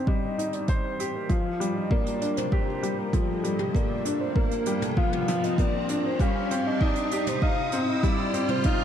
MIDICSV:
0, 0, Header, 1, 5, 480
1, 0, Start_track
1, 0, Tempo, 612245
1, 1022, Time_signature, 4, 2, 24, 8
1, 6933, End_track
2, 0, Start_track
2, 0, Title_t, "Soft synth lead"
2, 0, Program_c, 0, 80
2, 55, Note_on_c, 0, 75, 107
2, 420, Note_on_c, 0, 74, 99
2, 432, Note_off_c, 0, 75, 0
2, 541, Note_on_c, 0, 72, 97
2, 553, Note_off_c, 0, 74, 0
2, 906, Note_on_c, 0, 70, 89
2, 917, Note_off_c, 0, 72, 0
2, 1021, Note_on_c, 0, 77, 103
2, 1033, Note_off_c, 0, 70, 0
2, 1380, Note_on_c, 0, 75, 92
2, 1392, Note_off_c, 0, 77, 0
2, 1503, Note_on_c, 0, 74, 98
2, 1515, Note_off_c, 0, 75, 0
2, 1859, Note_on_c, 0, 72, 92
2, 1871, Note_off_c, 0, 74, 0
2, 1977, Note_off_c, 0, 72, 0
2, 1982, Note_on_c, 0, 72, 96
2, 2339, Note_on_c, 0, 70, 90
2, 2351, Note_off_c, 0, 72, 0
2, 2459, Note_on_c, 0, 69, 96
2, 2471, Note_off_c, 0, 70, 0
2, 2819, Note_on_c, 0, 67, 87
2, 2831, Note_off_c, 0, 69, 0
2, 2942, Note_on_c, 0, 74, 106
2, 2954, Note_off_c, 0, 67, 0
2, 3298, Note_on_c, 0, 72, 95
2, 3309, Note_off_c, 0, 74, 0
2, 3418, Note_on_c, 0, 70, 97
2, 3430, Note_off_c, 0, 72, 0
2, 3782, Note_on_c, 0, 69, 96
2, 3794, Note_off_c, 0, 70, 0
2, 3896, Note_off_c, 0, 69, 0
2, 3900, Note_on_c, 0, 77, 104
2, 4266, Note_on_c, 0, 75, 94
2, 4278, Note_off_c, 0, 77, 0
2, 4395, Note_on_c, 0, 74, 98
2, 4406, Note_off_c, 0, 75, 0
2, 4747, Note_on_c, 0, 72, 90
2, 4758, Note_off_c, 0, 74, 0
2, 4864, Note_off_c, 0, 72, 0
2, 4872, Note_on_c, 0, 77, 110
2, 5229, Note_on_c, 0, 75, 96
2, 5241, Note_off_c, 0, 77, 0
2, 5352, Note_on_c, 0, 74, 99
2, 5363, Note_off_c, 0, 75, 0
2, 5708, Note_on_c, 0, 72, 95
2, 5720, Note_off_c, 0, 74, 0
2, 5816, Note_off_c, 0, 72, 0
2, 5821, Note_on_c, 0, 77, 102
2, 6189, Note_on_c, 0, 75, 96
2, 6201, Note_off_c, 0, 77, 0
2, 6306, Note_on_c, 0, 74, 101
2, 6318, Note_off_c, 0, 75, 0
2, 6662, Note_on_c, 0, 72, 88
2, 6674, Note_off_c, 0, 74, 0
2, 6782, Note_off_c, 0, 72, 0
2, 6790, Note_on_c, 0, 77, 113
2, 6933, Note_off_c, 0, 77, 0
2, 6933, End_track
3, 0, Start_track
3, 0, Title_t, "Upright piano"
3, 0, Program_c, 1, 0
3, 0, Control_c, 1, 64, 127
3, 0, Note_on_c, 1, 55, 70
3, 0, Note_on_c, 1, 60, 64
3, 0, Note_on_c, 1, 63, 71
3, 0, Note_on_c, 1, 67, 73
3, 60, Note_off_c, 1, 55, 0
3, 60, Note_on_c, 1, 55, 73
3, 289, Note_off_c, 1, 55, 0
3, 299, Note_off_c, 1, 63, 0
3, 299, Note_on_c, 1, 63, 66
3, 528, Note_off_c, 1, 63, 0
3, 540, Note_on_c, 1, 72, 65
3, 678, Note_off_c, 1, 72, 0
3, 779, Note_off_c, 1, 67, 0
3, 779, Note_on_c, 1, 67, 65
3, 1009, Note_off_c, 1, 67, 0
3, 1013, Note_on_c, 1, 53, 73
3, 1031, Control_c, 1, 64, 0
3, 1038, Note_off_c, 1, 60, 0
3, 1169, Control_c, 1, 64, 127
3, 1245, Note_off_c, 1, 53, 0
3, 1255, Note_on_c, 1, 55, 70
3, 1486, Note_off_c, 1, 55, 0
3, 1497, Note_on_c, 1, 58, 97
3, 1727, Note_off_c, 1, 58, 0
3, 1736, Note_on_c, 1, 62, 68
3, 1967, Note_off_c, 1, 62, 0
3, 1976, Note_on_c, 1, 67, 73
3, 2207, Note_off_c, 1, 67, 0
3, 2216, Note_on_c, 1, 55, 65
3, 2447, Note_off_c, 1, 55, 0
3, 2458, Note_on_c, 1, 53, 71
3, 2688, Note_off_c, 1, 53, 0
3, 2694, Note_on_c, 1, 55, 67
3, 2926, Note_off_c, 1, 55, 0
3, 2936, Note_on_c, 1, 58, 81
3, 3167, Note_off_c, 1, 58, 0
3, 3173, Note_on_c, 1, 62, 69
3, 3314, Note_off_c, 1, 62, 0
3, 3416, Note_on_c, 1, 58, 74
3, 3647, Note_off_c, 1, 58, 0
3, 3657, Note_on_c, 1, 55, 70
3, 3887, Note_off_c, 1, 55, 0
3, 3896, Note_on_c, 1, 53, 79
3, 4127, Note_off_c, 1, 53, 0
3, 4142, Note_on_c, 1, 53, 94
3, 4370, Note_off_c, 1, 53, 0
3, 4380, Note_on_c, 1, 58, 69
3, 4518, Note_off_c, 1, 58, 0
3, 4620, Note_on_c, 1, 62, 73
3, 4849, Note_off_c, 1, 62, 0
3, 4864, Note_on_c, 1, 55, 81
3, 4872, Control_c, 1, 64, 0
3, 5010, Control_c, 1, 64, 127
3, 5091, Note_off_c, 1, 55, 0
3, 5104, Note_on_c, 1, 60, 76
3, 5331, Note_off_c, 1, 60, 0
3, 5344, Note_on_c, 1, 63, 98
3, 5571, Note_off_c, 1, 63, 0
3, 5582, Note_on_c, 1, 67, 72
3, 5810, Note_off_c, 1, 67, 0
3, 5818, Note_on_c, 1, 75, 81
3, 6048, Note_off_c, 1, 75, 0
3, 6061, Note_on_c, 1, 60, 76
3, 6289, Note_off_c, 1, 60, 0
3, 6298, Note_on_c, 1, 55, 74
3, 6528, Note_off_c, 1, 55, 0
3, 6537, Note_on_c, 1, 60, 71
3, 6767, Note_off_c, 1, 60, 0
3, 6785, Note_on_c, 1, 63, 87
3, 6933, Note_off_c, 1, 63, 0
3, 6933, End_track
4, 0, Start_track
4, 0, Title_t, "Riser"
4, 0, Program_c, 2, 103
4, 0, Note_on_c, 2, 60, 68
4, 6933, Note_off_c, 2, 60, 0
4, 6933, End_track
5, 0, Start_track
5, 0, Title_t, "Drums"
5, 55, Note_on_c, 9, 36, 99
5, 134, Note_off_c, 9, 36, 0
5, 305, Note_on_c, 9, 42, 70
5, 384, Note_off_c, 9, 42, 0
5, 414, Note_on_c, 9, 42, 40
5, 493, Note_off_c, 9, 42, 0
5, 532, Note_on_c, 9, 42, 57
5, 535, Note_on_c, 9, 36, 100
5, 610, Note_off_c, 9, 42, 0
5, 613, Note_off_c, 9, 36, 0
5, 781, Note_on_c, 9, 42, 66
5, 859, Note_off_c, 9, 42, 0
5, 1014, Note_on_c, 9, 42, 51
5, 1015, Note_on_c, 9, 36, 97
5, 1092, Note_off_c, 9, 42, 0
5, 1094, Note_off_c, 9, 36, 0
5, 1262, Note_on_c, 9, 42, 62
5, 1341, Note_off_c, 9, 42, 0
5, 1495, Note_on_c, 9, 36, 94
5, 1574, Note_off_c, 9, 36, 0
5, 1618, Note_on_c, 9, 42, 54
5, 1696, Note_off_c, 9, 42, 0
5, 1737, Note_on_c, 9, 42, 63
5, 1816, Note_off_c, 9, 42, 0
5, 1857, Note_on_c, 9, 42, 51
5, 1865, Note_on_c, 9, 45, 55
5, 1935, Note_off_c, 9, 42, 0
5, 1944, Note_off_c, 9, 45, 0
5, 1976, Note_on_c, 9, 36, 94
5, 2055, Note_off_c, 9, 36, 0
5, 2220, Note_on_c, 9, 42, 69
5, 2298, Note_off_c, 9, 42, 0
5, 2456, Note_on_c, 9, 36, 103
5, 2457, Note_on_c, 9, 42, 61
5, 2534, Note_off_c, 9, 36, 0
5, 2536, Note_off_c, 9, 42, 0
5, 2699, Note_on_c, 9, 42, 67
5, 2777, Note_off_c, 9, 42, 0
5, 2814, Note_on_c, 9, 45, 52
5, 2892, Note_off_c, 9, 45, 0
5, 2936, Note_on_c, 9, 36, 90
5, 2944, Note_on_c, 9, 42, 52
5, 3015, Note_off_c, 9, 36, 0
5, 3022, Note_off_c, 9, 42, 0
5, 3177, Note_on_c, 9, 42, 72
5, 3255, Note_off_c, 9, 42, 0
5, 3415, Note_on_c, 9, 36, 99
5, 3494, Note_off_c, 9, 36, 0
5, 3538, Note_on_c, 9, 42, 55
5, 3616, Note_off_c, 9, 42, 0
5, 3651, Note_on_c, 9, 42, 69
5, 3730, Note_off_c, 9, 42, 0
5, 3778, Note_on_c, 9, 45, 57
5, 3781, Note_on_c, 9, 42, 52
5, 3857, Note_off_c, 9, 45, 0
5, 3859, Note_off_c, 9, 42, 0
5, 3896, Note_on_c, 9, 36, 96
5, 3974, Note_off_c, 9, 36, 0
5, 4020, Note_on_c, 9, 45, 51
5, 4098, Note_off_c, 9, 45, 0
5, 4139, Note_on_c, 9, 42, 74
5, 4218, Note_off_c, 9, 42, 0
5, 4262, Note_on_c, 9, 42, 46
5, 4340, Note_off_c, 9, 42, 0
5, 4376, Note_on_c, 9, 36, 98
5, 4380, Note_on_c, 9, 42, 57
5, 4454, Note_off_c, 9, 36, 0
5, 4459, Note_off_c, 9, 42, 0
5, 4616, Note_on_c, 9, 42, 67
5, 4694, Note_off_c, 9, 42, 0
5, 4857, Note_on_c, 9, 36, 100
5, 4859, Note_on_c, 9, 42, 51
5, 4935, Note_off_c, 9, 36, 0
5, 4938, Note_off_c, 9, 42, 0
5, 5103, Note_on_c, 9, 42, 69
5, 5181, Note_off_c, 9, 42, 0
5, 5337, Note_on_c, 9, 36, 96
5, 5416, Note_off_c, 9, 36, 0
5, 5452, Note_on_c, 9, 42, 60
5, 5530, Note_off_c, 9, 42, 0
5, 5576, Note_on_c, 9, 42, 69
5, 5654, Note_off_c, 9, 42, 0
5, 5696, Note_on_c, 9, 42, 51
5, 5698, Note_on_c, 9, 45, 58
5, 5775, Note_off_c, 9, 42, 0
5, 5777, Note_off_c, 9, 45, 0
5, 5817, Note_on_c, 9, 36, 94
5, 5896, Note_off_c, 9, 36, 0
5, 6051, Note_on_c, 9, 42, 68
5, 6129, Note_off_c, 9, 42, 0
5, 6298, Note_on_c, 9, 36, 103
5, 6298, Note_on_c, 9, 42, 55
5, 6376, Note_off_c, 9, 42, 0
5, 6377, Note_off_c, 9, 36, 0
5, 6537, Note_on_c, 9, 42, 68
5, 6615, Note_off_c, 9, 42, 0
5, 6653, Note_on_c, 9, 45, 55
5, 6731, Note_off_c, 9, 45, 0
5, 6770, Note_on_c, 9, 42, 59
5, 6779, Note_on_c, 9, 36, 96
5, 6848, Note_off_c, 9, 42, 0
5, 6857, Note_off_c, 9, 36, 0
5, 6933, End_track
0, 0, End_of_file